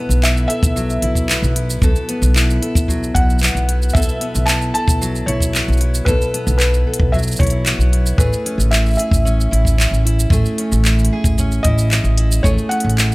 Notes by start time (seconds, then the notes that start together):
Already playing: B2 B3 E4 A4 B4
0.09 B1, shaker
0.23 E4 E5, clap, shaker
0.37 shaker
0.48 A4 E5, open hi-hat
0.63 B1, kick, shaker
0.76 F#3, shaker
0.90 shaker
1.02 B1 E4, open hi-hat
1.15 kick, shaker
1.29 B3, clap, shaker
1.42 B1, shaker
1.56 E4, open hi-hat
1.70 shaker
1.82 B1 B2 A4, kick, shaker
1.96 shaker
2.09 B3, open hi-hat
2.22 B1, shaker
2.35 E4, clap, shaker
2.50 shaker
2.62 A4, open hi-hat
2.75 B1, kick, shaker
2.88 F#3, kick, shaker
3.03 shaker
3.15 B1 E4 F#5, kick, open hi-hat
3.30 shaker
3.39 B3, shaker
3.43 clap, shaker
3.48 shaker
3.55 B1, shaker
3.69 E4, open hi-hat
3.82 shaker
3.89 shaker
3.93 B1 B2 A4 E5, kick, shaker
4.02 shaker
4.09 shaker
4.21 B3, open hi-hat
4.35 B1, shaker
4.46 E4 A5, clap, shaker
4.62 shaker
4.74 A4 A5, open hi-hat
4.87 B1, kick, shaker
5.01 F#3, shaker
5.15 shaker
5.26 B1 E4 C#5, open hi-hat
5.40 kick, shaker
5.54 B3, clap, shaker
5.68 B1, shaker
5.73 shaker
5.77 open hi-hat, shaker
5.81 E4
5.95 shaker
6.05 B1 B2 A4 B4, kick, shaker
6.22 shaker
6.34 B3, open hi-hat
6.47 B1, shaker
6.58 E4 B4, clap, shaker
6.74 shaker
6.87 A4
6.94 open hi-hat
7.00 B1, kick
7.12 F#3 E5, kick, shaker
7.18 shaker
7.23 shaker
7.27 shaker
7.31 shaker
7.36 C#5, kick, shaker
7.40 B1 E4, open hi-hat
7.43 open hi-hat
7.47 open hi-hat
7.50 open hi-hat
7.66 B3, clap, shaker
7.79 B1, shaker
7.93 E4, open hi-hat
8.06 shaker
8.18 A1 A3 G#4 B4, kick, shaker
8.33 shaker
8.46 C#4, open hi-hat
8.58 A1, shaker
8.71 E4 E5, clap, shaker
8.86 shaker
8.88 shaker
8.90 shaker
8.93 shaker
8.95 E5, shaker
8.98 G#4, open hi-hat, shaker
9.11 A1, kick, shaker
9.25 C#4, shaker
9.41 shaker
9.51 A1 E4, open hi-hat
9.65 kick, shaker
9.78 C#4, clap, shaker
9.91 A1, shaker
10.05 E4, open hi-hat
10.20 shaker
10.30 A1 A3 G#4, kick, shaker
10.45 shaker
10.58 C#4, open hi-hat
10.72 A1, shaker
10.85 E4, clap, shaker
10.99 shaker
11.05 open hi-hat
11.13 G#4
11.24 A1, kick, shaker
11.38 C#4, kick, shaker
11.52 shaker
11.63 A1 E4 D#5, kick, open hi-hat
11.78 shaker
11.92 C#4, clap, shaker
12.04 A1, shaker
12.18 E4, open hi-hat
12.32 shaker
12.43 A1 A3 G#4 C#5, kick, shaker
12.58 shaker
12.69 C#4 F#5, open hi-hat
12.80 open hi-hat
12.85 A1
12.90 open hi-hat
12.98 E4, clap, shaker
13.12 shaker